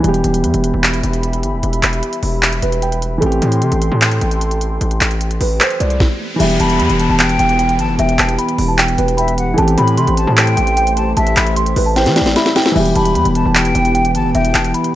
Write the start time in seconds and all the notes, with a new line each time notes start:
0.00 E3 G3
0.04 E1 B3 G4 E5 B5, closed hi-hat
0.08 G4
0.14 closed hi-hat
0.24 E1, closed hi-hat
0.34 closed hi-hat
0.44 E2, closed hi-hat
0.54 E1, closed hi-hat
0.64 closed hi-hat
0.74 E1
0.84 clap, closed hi-hat
0.94 closed hi-hat
1.04 E1, closed hi-hat
1.13 closed hi-hat
1.23 closed hi-hat
1.33 closed hi-hat
1.43 G1, closed hi-hat
1.53 E1
1.63 E1, closed hi-hat
1.73 closed hi-hat
1.83 E1, clap, closed hi-hat
1.93 closed hi-hat
2.03 closed hi-hat
2.13 closed hi-hat
2.23 E1, open hi-hat
2.43 clap, closed hi-hat
2.53 closed hi-hat
2.62 E1 B4, closed hi-hat
2.72 closed hi-hat
2.82 G5, closed hi-hat
2.92 closed hi-hat
3.02 closed hi-hat
3.18 E3 A3
3.22 A1 C4 G4 A4 G5 C6, closed hi-hat
3.32 closed hi-hat
3.42 A2, closed hi-hat
3.52 closed hi-hat
3.62 C3, closed hi-hat
3.72 A1, closed hi-hat
3.82 closed hi-hat
3.92 A2
4.02 clap, closed hi-hat
4.12 closed hi-hat
4.21 A1, closed hi-hat
4.31 closed hi-hat
4.41 closed hi-hat
4.51 closed hi-hat
4.61 closed hi-hat
4.81 A1, closed hi-hat, riser
4.91 closed hi-hat
5.01 A1, clap, closed hi-hat
5.11 closed hi-hat
5.21 closed hi-hat
5.31 closed hi-hat
5.41 A1 B4, open hi-hat
5.60 C5, clap, closed hi-hat
5.70 closed hi-hat
5.80 C2 D5, closed hi-hat
5.90 closed hi-hat
6.00 kick, snare
6.36 E3 G3
6.40 E1 E3 B3 G4 E5, closed hi-hat, crash, downlifter
6.44 G4
6.50 closed hi-hat
6.60 E1 A5 B5, closed hi-hat
6.70 closed hi-hat
6.79 E2 B5, closed hi-hat
6.90 E1, closed hi-hat
6.99 A5, closed hi-hat
7.09 E1 A5
7.19 G5, clap, closed hi-hat
7.29 closed hi-hat
7.39 E1 G5, closed hi-hat
7.49 closed hi-hat
7.59 G5, closed hi-hat
7.69 closed hi-hat
7.79 G1 A5, closed hi-hat
7.89 E1
7.99 E1 E5 G5, closed hi-hat
8.09 closed hi-hat
8.19 E1 A5, clap, closed hi-hat
8.29 closed hi-hat
8.39 B5, closed hi-hat
8.49 closed hi-hat
8.59 E1, open hi-hat
8.68 A5
8.78 G5, clap, closed hi-hat
8.88 closed hi-hat
8.98 E1 B4, closed hi-hat
9.08 closed hi-hat
9.17 E5 G5 B5, closed hi-hat
9.28 closed hi-hat
9.38 F#5, closed hi-hat
9.54 E3 A3
9.58 A1 A3 C4 C5 A5, closed hi-hat
9.62 G4
9.68 closed hi-hat
9.78 A2 B5, closed hi-hat
9.88 closed hi-hat
9.98 C3 C6, closed hi-hat
10.07 A1, closed hi-hat
10.17 A5, closed hi-hat
10.27 A2 A5
10.37 G5, clap, closed hi-hat
10.47 closed hi-hat
10.57 A1 G5, closed hi-hat
10.67 closed hi-hat
10.77 G5, closed hi-hat
10.87 closed hi-hat
10.96 A5, closed hi-hat
11.17 A1 E5 A5, closed hi-hat
11.27 closed hi-hat
11.36 A1 B5, clap, closed hi-hat
11.47 closed hi-hat
11.56 C6, closed hi-hat
11.66 closed hi-hat
11.76 A1 B4, open hi-hat
11.86 A5
11.96 C5 G5, snare, closed hi-hat
12.06 E3, snare, closed hi-hat
12.16 D5, snare, closed hi-hat
12.21 A1
12.26 snare, closed hi-hat
12.36 E5 B5, snare, closed hi-hat
12.46 snare, closed hi-hat
12.56 G5, snare, closed hi-hat
12.62 snare, closed hi-hat
12.69 E3, closed hi-hat
12.74 E1 E3 G3 B3 E5, crash
12.80 G4
12.86 closed hi-hat
12.96 E1 A5 B5, closed hi-hat
13.05 closed hi-hat
13.15 E2 B5, closed hi-hat
13.25 E1, closed hi-hat
13.35 A5, closed hi-hat
13.45 E1 A5
13.55 G5, clap, closed hi-hat
13.65 closed hi-hat
13.75 E1 G5, closed hi-hat
13.85 closed hi-hat
13.95 G5, closed hi-hat
14.05 closed hi-hat
14.15 G1 A5, closed hi-hat
14.25 E1
14.34 E1 E5 G5, closed hi-hat
14.45 closed hi-hat
14.55 E1 A5, clap, closed hi-hat
14.64 closed hi-hat
14.74 B5, closed hi-hat
14.84 closed hi-hat